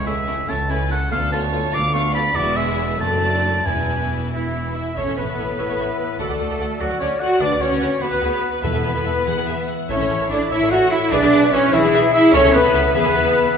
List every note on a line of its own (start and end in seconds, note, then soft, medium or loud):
0.00 0.41 C#2 medium
0.00 1.13 C#3 medium
0.00 0.26 E4 soft
0.06 0.14 A3 soft
0.06 0.14 C#4 soft
0.06 0.14 E4 soft
0.06 0.49 G#4 medium
0.06 0.51 E5 medium
0.27 0.35 A3 soft
0.27 0.35 C#4 medium
0.27 0.67 E4 soft
0.27 0.36 E4 soft
0.47 1.04 C#2 medium
0.47 0.56 A3 medium
0.47 0.56 C#4 medium
0.47 0.55 E4 medium
0.47 2.37 A4 medium
0.47 0.58 C#5 medium
0.47 0.72 A5 medium
0.68 0.77 A3 soft
0.68 0.77 C#4 soft
0.68 0.76 E4 soft
0.68 1.12 E4 soft
0.68 0.90 B4 medium
0.68 0.91 G#5 medium
0.89 0.98 A3 medium
0.89 1.12 C#4 soft
0.89 0.98 C#4 soft
0.89 0.97 E4 medium
0.89 1.11 A4 medium
0.89 1.11 F#5 medium
1.11 1.66 D2 medium
1.11 2.37 D3 medium
1.11 1.19 A3 medium
1.11 1.19 B3 medium
1.11 1.19 F4 medium
1.11 1.32 A4 medium
1.11 1.32 F5 loud
1.31 1.40 A3 medium
1.31 2.13 B3 medium
1.31 1.40 B3 medium
1.31 1.40 F4 medium
1.31 1.74 C#5 medium
1.31 1.76 A5 medium
1.52 1.61 A3 medium
1.52 1.60 B3 medium
1.52 1.93 F4 medium
1.52 1.60 F4 medium
1.73 2.28 D2 medium
1.73 1.81 A3 medium
1.73 1.81 B3 medium
1.73 1.81 F4 medium
1.73 2.78 B4 medium
1.73 1.94 F5 medium
1.73 1.95 D6 loud
1.94 2.02 A3 medium
1.94 2.02 B3 medium
1.94 2.37 F4 medium
1.94 2.03 F4 medium
1.94 2.15 F5 medium
1.94 2.14 C#6 loud
2.14 2.22 A3 medium
2.14 3.03 B3 medium
2.14 2.22 B3 medium
2.14 2.23 F4 medium
2.14 2.36 D5 medium
2.14 2.37 B5 loud
2.35 2.98 E1 medium
2.35 3.03 E2 medium
2.35 2.98 E2 medium
2.35 2.97 G#3 medium
2.35 2.98 B3 medium
2.35 2.97 E4 medium
2.35 2.57 F#4 medium
2.35 2.57 D5 loud
2.56 3.03 G#3 medium
2.56 3.01 G#4 medium
2.56 3.00 E5 medium
2.79 3.03 E4 medium
2.79 3.03 B4 medium
3.00 3.67 F#1 medium
3.00 3.68 F#2 medium
3.00 3.67 F#2 medium
3.00 3.67 A3 medium
3.00 3.67 D4 medium
3.00 3.66 D5 medium
3.00 3.68 A5 loud
3.22 3.68 A3 medium
3.44 3.68 D4 soft
3.44 3.68 D5 soft
3.66 4.75 E1 soft
3.66 4.99 E2 soft
3.66 4.29 E2 medium
3.66 4.32 E2 medium
3.66 4.75 E3 soft
3.66 4.75 B3 soft
3.66 4.75 E4 soft
3.66 4.33 B4 medium
3.66 4.16 G#5 medium
3.88 4.75 B3 soft
4.10 4.53 E4 soft
4.32 4.74 E3 soft
4.32 4.73 E4 soft
4.32 4.78 E4 soft
4.32 4.74 E4 soft
4.32 4.99 B4 soft
4.54 5.37 E4 soft
4.76 4.99 B3 soft
4.76 4.98 E4 medium
4.76 4.85 E5 soft
4.76 4.97 E5 soft
4.76 4.99 E5 soft
4.76 4.98 E5 soft
4.97 5.02 A1 soft
4.97 6.22 A2 soft
4.97 5.18 C#4 medium
4.97 5.01 A4 soft
4.97 5.62 A4 soft
4.97 6.17 A4 soft
4.97 5.17 C#5 medium
4.97 5.01 C#5 soft
4.97 5.18 C#5 medium
4.97 5.19 C#5 medium
4.97 5.18 C#5 medium
4.97 6.17 C#5 soft
4.97 5.01 E5 soft
5.07 5.12 A1 soft
5.07 5.12 A4 soft
5.07 5.12 C#5 soft
5.07 5.12 E5 soft
5.17 5.22 A1 soft
5.17 6.22 E3 soft
5.17 6.20 B3 medium
5.17 5.22 A4 soft
5.17 6.18 B4 soft
5.17 6.20 B4 medium
5.17 6.19 B4 soft
5.17 6.18 B4 medium
5.17 5.22 C#5 soft
5.17 5.23 E5 soft
5.28 5.33 A1 soft
5.28 5.32 A4 soft
5.28 5.32 C#5 soft
5.28 5.33 E5 soft
5.38 5.43 A1 medium
5.38 6.22 E4 soft
5.38 5.43 A4 medium
5.38 5.43 C#5 soft
5.38 5.42 E5 soft
5.59 5.64 A1 soft
5.59 6.20 E4 soft
5.59 5.63 A4 soft
5.59 5.98 A4 soft
5.59 5.63 C#5 soft
5.59 5.63 E5 soft
5.69 5.74 A1 soft
5.69 5.73 A4 soft
5.69 5.73 C#5 soft
5.69 5.73 E5 soft
5.79 5.84 A1 medium
5.79 5.83 A4 soft
5.79 5.83 C#5 soft
5.79 6.22 E5 soft
5.79 5.84 E5 medium
6.00 6.79 A4 soft
6.19 6.24 D2 medium
6.19 7.39 D3 soft
6.19 6.79 A3 medium
6.19 7.38 F#4 soft
6.19 6.30 F#4 soft
6.19 6.80 A4 medium
6.19 6.79 A4 medium
6.19 6.82 A4 medium
6.19 6.79 A4 medium
6.19 6.24 A4 medium
6.19 7.38 D5 soft
6.19 6.24 D5 medium
6.19 6.23 F#5 soft
6.29 6.35 D2 soft
6.29 6.34 A4 soft
6.29 6.34 D5 soft
6.29 6.33 F#5 soft
6.39 6.45 D2 soft
6.39 7.59 D4 soft
6.39 6.44 A4 soft
6.39 6.50 A4 soft
6.39 6.44 D5 soft
6.39 6.44 F#5 soft
6.50 6.54 D2 soft
6.50 6.54 A4 soft
6.50 6.54 D5 soft
6.50 6.54 F#5 soft
6.59 6.64 D2 medium
6.59 7.80 F#4 soft
6.59 6.64 A4 medium
6.59 6.64 D5 medium
6.59 8.04 D5 medium
6.59 6.64 F#5 medium
6.80 6.85 D2 soft
6.80 6.88 F#3 medium
6.80 6.99 F#4 medium
6.80 7.00 F#4 medium
6.80 7.01 F#4 medium
6.80 7.20 A4 soft
6.80 6.84 A4 soft
6.80 6.84 D5 soft
6.80 6.84 F#5 soft
6.90 6.95 D2 soft
6.90 6.95 A4 soft
6.90 6.95 D5 soft
6.90 6.94 F#5 medium
6.99 7.05 D2 medium
6.99 7.20 C#4 medium
6.99 7.05 A4 medium
6.99 7.21 C#5 medium
6.99 7.20 C#5 medium
6.99 7.22 C#5 medium
6.99 7.09 C#5 medium
6.99 7.05 D5 medium
6.99 8.21 F#5 medium
6.99 7.05 F#5 medium
7.19 7.41 F#4 medium
7.19 7.43 A4 soft
7.19 7.42 F#5 medium
7.19 7.41 F#5 medium
7.19 7.43 F#5 medium
7.19 7.41 F#5 medium
7.40 7.45 D2 medium
7.40 8.65 D3 medium
7.40 7.49 D4 medium
7.40 7.98 F#4 medium
7.40 7.45 F#4 medium
7.40 7.98 B4 medium
7.40 7.45 B4 medium
7.40 7.63 D5 medium
7.40 7.61 D5 medium
7.40 7.63 D5 medium
7.40 7.61 D5 medium
7.40 7.45 F#5 medium
7.51 7.55 D2 medium
7.51 7.55 F#4 soft
7.51 7.55 B4 soft
7.51 7.55 F#5 soft
7.60 7.65 D2 medium
7.60 8.01 C#4 medium
7.60 8.65 D4 soft
7.60 7.65 F#4 soft
7.60 7.65 B4 soft
7.60 8.03 C#5 medium
7.60 8.02 C#5 medium
7.60 8.01 C#5 medium
7.60 8.02 C#5 medium
7.60 7.64 F#5 medium
7.70 7.75 D2 soft
7.70 7.75 F#4 medium
7.70 7.75 B4 soft
7.70 7.74 F#5 soft
7.80 7.86 D2 medium
7.80 7.85 F#4 medium
7.80 7.85 B4 medium
7.80 7.85 F#5 medium
8.01 8.06 D2 soft
8.01 8.62 B3 medium
8.01 8.62 F#4 medium
8.01 8.06 F#4 medium
8.01 9.04 B4 medium
8.01 8.62 B4 medium
8.01 8.22 B4 medium
8.01 8.07 B4 medium
8.01 8.63 B4 medium
8.01 8.62 B4 medium
8.01 8.05 F#5 medium
8.11 8.16 D2 medium
8.11 8.16 F#4 medium
8.11 8.16 B4 medium
8.11 8.15 F#5 medium
8.21 8.26 D2 medium
8.21 8.27 F#4 medium
8.21 8.44 G#4 medium
8.21 8.27 B4 medium
8.21 8.25 F#5 medium
8.21 8.65 F#5 soft
8.43 8.65 F#4 soft
8.43 8.63 F#4 medium
8.62 8.67 E2 medium
8.62 9.22 E2 medium
8.62 9.24 E3 soft
8.62 9.66 B3 medium
8.62 9.56 E4 medium
8.62 8.67 A4 medium
8.62 9.25 A4 medium
8.62 9.66 B4 medium
8.62 8.67 B4 medium
8.62 9.67 B4 medium
8.62 9.25 B4 medium
8.62 9.67 B4 medium
8.62 8.67 E5 medium
8.73 8.78 E2 soft
8.73 8.78 A4 soft
8.73 8.78 B4 soft
8.73 8.78 E5 soft
8.83 8.88 E2 soft
8.83 9.04 E4 soft
8.83 8.88 A4 soft
8.83 8.88 B4 soft
8.83 8.89 E5 soft
8.94 8.99 E2 soft
8.94 8.99 A4 soft
8.94 8.99 B4 soft
8.94 8.99 E5 soft
9.04 9.09 E2 medium
9.04 9.45 E4 soft
9.04 9.09 A4 medium
9.04 9.91 B4 soft
9.04 9.10 B4 medium
9.04 9.09 E5 medium
9.25 9.30 E2 soft
9.25 9.91 E3 medium
9.25 9.31 G#4 medium
9.25 9.68 G#4 soft
9.25 9.31 B4 soft
9.25 9.68 B4 soft
9.25 9.46 F#5 medium
9.36 9.41 E2 soft
9.36 9.42 G#4 medium
9.36 9.42 B4 soft
9.47 9.51 E2 medium
9.47 9.66 E4 soft
9.47 9.52 G#4 medium
9.47 9.52 B4 medium
9.47 9.69 E5 medium
9.67 10.29 E4 soft
9.67 10.70 E5 soft
9.67 9.89 F#5 medium
9.89 9.93 A1 medium
9.89 11.14 A2 soft
9.89 10.28 C#4 medium
9.89 10.53 E4 medium
9.89 10.47 A4 medium
9.89 9.94 A4 medium
9.89 10.28 C#5 medium
9.89 9.94 C#5 medium
9.89 9.94 E5 medium
9.89 10.47 E5 medium
9.99 10.04 A1 soft
9.99 10.05 A4 soft
9.99 10.05 C#5 soft
9.99 10.04 E5 soft
10.10 10.14 A1 soft
10.10 11.14 E3 soft
10.10 10.15 A4 soft
10.10 10.15 C#5 soft
10.10 10.14 E5 soft
10.20 10.24 A1 soft
10.20 10.25 A4 soft
10.20 10.25 C#5 soft
10.20 10.24 E5 soft
10.30 10.35 A1 medium
10.30 10.51 D4 medium
10.30 11.51 E4 medium
10.30 10.35 A4 medium
10.30 10.35 C#5 medium
10.30 10.39 D5 medium
10.30 10.53 D5 medium
10.30 10.52 D5 medium
10.30 10.51 D5 medium
10.30 10.35 E5 medium
10.51 10.55 A1 medium
10.51 10.71 E4 medium
10.51 10.90 A4 medium
10.51 11.11 A4 medium
10.51 10.56 A4 medium
10.51 11.11 C#5 medium
10.51 10.56 C#5 medium
10.51 11.10 E5 medium
10.51 10.73 E5 medium
10.51 10.70 E5 medium
10.51 10.56 E5 soft
10.51 10.58 E5 medium
10.51 10.72 E5 medium
10.61 10.65 A1 medium
10.61 10.66 A4 medium
10.61 10.66 C#5 medium
10.61 10.65 E5 medium
10.71 10.75 A1 medium
10.71 10.92 F#4 loud
10.71 10.76 A4 medium
10.71 10.76 C#5 medium
10.71 10.76 E5 medium
10.71 11.91 E5 medium
10.71 10.91 F#5 medium
10.71 10.92 F#5 medium
10.71 10.93 F#5 medium
10.71 10.92 F#5 medium
10.91 11.12 E4 medium
10.91 11.14 A4 medium
10.91 11.01 E5 medium
10.91 11.12 E5 medium
10.91 11.13 E5 medium
11.11 11.16 B1 medium
11.11 12.35 B2 medium
11.11 11.53 D4 loud
11.11 11.71 G#4 medium
11.11 11.17 G#4 medium
11.11 11.72 B4 medium
11.11 11.17 B4 medium
11.11 11.53 D5 medium
11.11 11.52 D5 medium
11.11 11.72 E5 medium
11.11 11.16 E5 medium
11.22 11.26 B1 medium
11.22 11.26 G#4 medium
11.22 11.26 B4 medium
11.22 11.27 E5 medium
11.31 11.36 B1 medium
11.31 12.35 B3 medium
11.31 11.37 G#4 medium
11.31 11.37 B4 medium
11.31 11.36 E5 medium
11.42 11.47 B1 medium
11.42 11.47 G#4 medium
11.42 11.47 B4 medium
11.42 11.47 E5 medium
11.52 11.56 B1 loud
11.52 11.73 C#4 loud
11.52 12.72 E4 medium
11.52 11.57 G#4 loud
11.52 11.57 B4 medium
11.52 11.75 C#5 loud
11.52 11.75 C#5 medium
11.52 11.74 C#5 medium
11.52 11.73 C#5 medium
11.52 11.57 E5 medium
11.72 11.77 B1 medium
11.72 12.14 E3 loud
11.72 12.15 E4 loud
11.72 12.14 E4 medium
11.72 12.13 E4 medium
11.72 12.32 G#4 medium
11.72 12.12 G#4 medium
11.72 12.36 G#4 medium
11.72 11.78 G#4 medium
11.72 11.77 B4 medium
11.72 11.76 E5 medium
11.72 12.32 E5 medium
11.82 11.87 B1 medium
11.82 11.88 G#4 medium
11.82 11.88 B4 medium
11.82 11.87 E5 medium
11.92 11.97 B1 loud
11.92 11.98 G#4 loud
11.92 11.98 B4 medium
11.92 12.73 E5 medium
11.92 11.97 E5 loud
12.13 12.33 E4 loud
12.13 12.35 G#4 medium
12.13 12.33 E5 loud
12.13 12.22 E5 medium
12.13 12.23 E5 medium
12.13 12.20 E5 loud
12.33 12.38 C#2 medium
12.33 12.96 C#3 medium
12.33 12.54 C#4 loud
12.33 12.95 A4 medium
12.33 12.38 A4 medium
12.33 12.97 A4 medium
12.33 12.55 C#5 loud
12.33 12.42 C#5 loud
12.33 12.54 C#5 loud
12.33 12.93 E5 medium
12.33 12.38 E5 medium
12.44 12.48 C#2 medium
12.44 12.48 A4 medium
12.44 12.48 E5 medium
12.53 12.59 C#2 medium
12.53 12.96 A3 medium
12.53 12.94 B3 loud
12.53 12.58 A4 medium
12.53 12.94 B4 loud
12.53 12.94 B4 medium
12.53 12.93 B4 medium
12.53 12.94 B4 loud
12.53 12.59 E5 medium
12.64 12.69 C#2 medium
12.64 12.68 A4 medium
12.64 12.69 E5 medium
12.73 12.78 C#2 medium
12.73 13.14 E4 medium
12.73 12.78 A4 medium
12.73 13.36 E5 medium
12.73 12.78 E5 medium
12.94 12.99 E2 medium
12.94 13.58 E3 medium
12.94 13.57 B3 loud
12.94 12.99 G#4 medium
12.94 13.58 G#4 medium
12.94 13.18 G#4 medium
12.94 13.57 B4 loud
12.94 13.57 B4 medium
12.94 12.99 B4 medium
12.94 13.57 B4 medium
12.94 13.58 B4 medium
12.94 12.99 E5 medium
12.94 13.57 E5 medium
13.04 13.10 E2 medium
13.04 13.09 G#4 medium
13.04 13.09 B4 medium
13.04 13.09 E5 medium
13.15 13.21 E2 medium
13.15 13.35 E4 medium
13.15 13.20 G#4 medium
13.15 13.20 B4 medium
13.15 13.36 B4 medium
13.15 13.19 E5 medium
13.36 13.58 E4 soft
13.36 13.46 B4 medium
13.36 13.58 E5 medium